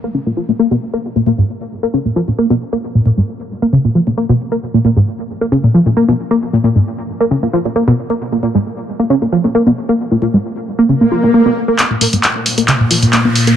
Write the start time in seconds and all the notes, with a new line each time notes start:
0.04 A#3
0.15 C#3
0.26 A#2
0.37 F3
0.49 A#2
0.59 A#3
0.71 B2
0.94 A#3
1.16 A#2
1.26 A#2
1.38 G#2
1.83 A#3
1.94 C#3
2.06 A#2
2.16 F3
2.28 A#2
2.38 A#3
2.50 B2
2.73 A#3
2.95 A#2
3.06 A#2
3.17 G#2
3.62 A#3
3.73 C#3
3.85 A#2
3.95 F3
4.07 A#2
4.18 A#3
4.29 B2
4.52 A#3
4.74 A#2
4.85 A#2
4.97 G#2
5.41 A#3
5.52 C#3
5.64 A#2
5.74 F3
5.86 A#2
5.97 A#3
6.08 B2
6.31 A#3
6.53 A#2
6.64 A#2
6.76 G#2
7.20 A#3
7.31 C#3
7.43 A#2
7.53 F3
7.65 A#2
7.76 A#3
7.88 B2
8.10 A#3
8.32 A#2
8.43 A#2
8.55 G#2
9.00 A#3
9.10 C#3
9.22 A#2
9.32 F3
9.44 A#2
9.55 A#3
9.67 B2
9.89 A#3
10.11 A#2
10.22 A#2
10.34 G#2
10.79 A#3
10.89 C#3, swell
11.01 A#2
11.12 F3
11.23 A#2
11.34 A#3
11.46 B2
11.68 A#3
11.79 A#2, clap, closed hi-hat, riser
11.91 A#2
12.01 A#2, open hi-hat
12.13 G#2, closed hi-hat
12.24 clap, closed hi-hat
12.46 open hi-hat
12.58 A#3, closed hi-hat
12.68 C#3, clap, closed hi-hat
12.80 A#2
12.91 F3, open hi-hat
13.02 A#2, closed hi-hat
13.13 A#3, clap, closed hi-hat
13.25 B2
13.35 open hi-hat
13.47 A#3, closed hi-hat